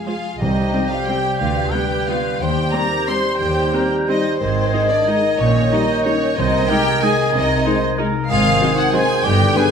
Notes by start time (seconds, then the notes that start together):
Already playing: F3 G#3 C4 F4 G#4
0.06 G#3 F4 G#4 C5 F5
0.39 C2 C3 G3 D#4 G4 C5 D#5 G6
0.58 G3
0.73 G3 C4 G4
0.91 F4 C5 F5
1.06 G3 C4 G4 G5
1.26 C5
1.39 D2 D3 F4 B4 F5
1.57 D4
1.73 G3 B3 G4 B4 G5
1.92 B4
2.08 G3 B3 F4 F5 G5
2.26 G4
2.40 D#2 D#3 G3 G4 C5 G5 G6
2.59 D#4
2.72 G3 C4 G4 A#4 D5 A#5
2.92 C5
3.08 G3 C4 C5 G5 C6
3.25 G4
3.39 D#2 D#3 G4 G5
3.57 D#4
3.73 G3 C4 G4 A#4
4.07 G3 C4 D#4 C5 D#5 G5
4.25 G4
4.39 G#1 G#2 D#3 C4 C5 D#5 G#6
4.57 D#3
4.73 G#3 D#4 D#5
4.89 D4 G#4 D5
5.07 G#3 D#4 D#5
5.24 G#4
5.39 A#1 A#2 C#4 C#5 G6
5.56 A#3
5.72 G3 D#4 D#5
5.89 G4
6.05 G3 C#4 D#4 C#5 D#5
6.22 G4
6.37 C2 C3 D#3 D#4 C5 D#5 G#6
6.53 C4
6.68 G#3 D#4 G4 A#4 G5
6.86 G#4
7.01 G#3 D#4 G#4 D#5 G#5
7.18 G#4
7.33 C2 C3 D#4 D#5
7.49 C4
7.65 G#3 D#4 C5
7.82 G#4
7.98 G#3 D#4 A#4 D#5
8.15 G#4
8.29 G#1 G#2 D#3 F4 G#4 C5 F5 G#6
8.45 D#3
8.60 F#3 C4 D#4
8.77 F#4 F#5
8.92 F#3 C4 D#4 G#4 C5 D#5 G#5
9.10 F#4
9.23 G1 G2 D3 G4 B4 D5 G5 G6
9.40 D3
9.55 G3 B3 D4 G4 G#4 B4 G#5